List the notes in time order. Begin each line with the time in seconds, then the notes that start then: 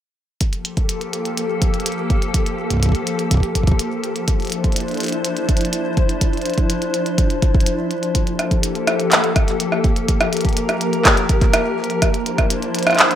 0.41 F3 A#3 G4 A4, kick, closed hi-hat
0.53 closed hi-hat
0.65 closed hi-hat
0.77 kick, closed hi-hat
0.89 closed hi-hat
1.01 closed hi-hat
1.13 closed hi-hat
1.25 closed hi-hat
1.37 closed hi-hat
1.62 kick, closed hi-hat
1.74 closed hi-hat
1.80 closed hi-hat
1.86 closed hi-hat
1.92 closed hi-hat
2.10 kick, closed hi-hat
2.22 closed hi-hat
2.34 kick, closed hi-hat
2.46 closed hi-hat
2.70 kick, closed hi-hat
2.74 kick
2.77 kick
2.80 kick, closed hi-hat
2.83 kick
2.86 kick
2.89 kick
2.92 kick, closed hi-hat
3.07 closed hi-hat
3.19 closed hi-hat
3.31 kick, closed hi-hat
3.34 kick
3.37 kick
3.40 kick, closed hi-hat
3.55 kick, closed hi-hat
3.63 kick, closed hi-hat
3.67 kick
3.71 kick
3.79 closed hi-hat
4.04 closed hi-hat
4.16 closed hi-hat
4.28 D4 E4 C5, kick, closed hi-hat
4.40 closed hi-hat
4.42 closed hi-hat
4.45 closed hi-hat
4.47 closed hi-hat
4.50 closed hi-hat
4.52 closed hi-hat
4.64 kick, closed hi-hat
4.72 closed hi-hat
4.76 closed hi-hat
4.80 closed hi-hat
4.88 closed hi-hat
4.91 closed hi-hat
4.94 closed hi-hat
4.97 closed hi-hat
5.00 closed hi-hat
5.03 closed hi-hat
5.06 closed hi-hat
5.08 closed hi-hat
5.12 closed hi-hat
5.25 closed hi-hat
5.37 closed hi-hat
5.49 kick, closed hi-hat
5.57 closed hi-hat
5.61 closed hi-hat
5.65 closed hi-hat
5.73 closed hi-hat
5.97 kick, closed hi-hat
6.09 closed hi-hat
6.21 kick, closed hi-hat
6.33 closed hi-hat
6.37 closed hi-hat
6.42 closed hi-hat
6.46 closed hi-hat
6.50 closed hi-hat
6.54 closed hi-hat
6.58 kick, closed hi-hat
6.70 closed hi-hat
6.82 closed hi-hat
6.94 closed hi-hat
7.06 closed hi-hat
7.18 kick, closed hi-hat
7.30 closed hi-hat
7.42 kick, closed hi-hat
7.55 kick
7.60 closed hi-hat
7.66 closed hi-hat
7.91 closed hi-hat
8.03 closed hi-hat
8.15 A#3 G4 A4, kick, closed hi-hat
8.27 closed hi-hat
8.39 cross-stick, closed hi-hat
8.51 kick, closed hi-hat
8.63 closed hi-hat
8.75 closed hi-hat
8.87 cross-stick, closed hi-hat
9.00 closed hi-hat
9.12 clap, closed hi-hat
9.24 closed hi-hat
9.36 kick, cross-stick, closed hi-hat
9.48 closed hi-hat
9.60 closed hi-hat
9.72 cross-stick
9.84 kick, closed hi-hat
9.96 closed hi-hat
10.08 A#4, kick, closed hi-hat
10.21 cross-stick, closed hi-hat
10.33 closed hi-hat
10.37 closed hi-hat
10.41 closed hi-hat
10.45 kick, closed hi-hat
10.49 closed hi-hat
10.53 closed hi-hat
10.57 closed hi-hat
10.69 cross-stick, closed hi-hat
10.81 closed hi-hat
10.93 closed hi-hat
11.05 kick, cross-stick, clap, closed hi-hat
11.17 closed hi-hat
11.29 kick, closed hi-hat
11.41 kick, closed hi-hat
11.54 cross-stick, closed hi-hat
11.84 closed hi-hat
11.90 closed hi-hat
12.02 F3 D4 E4 C5, kick, cross-stick, closed hi-hat
12.14 closed hi-hat
12.26 closed hi-hat
12.38 kick, cross-stick, closed hi-hat
12.50 closed hi-hat
12.62 closed hi-hat
12.75 closed hi-hat
12.79 closed hi-hat
12.83 closed hi-hat
12.87 cross-stick, closed hi-hat
12.90 cross-stick, closed hi-hat
12.93 cross-stick, closed hi-hat
12.96 cross-stick, clap, closed hi-hat
13.11 closed hi-hat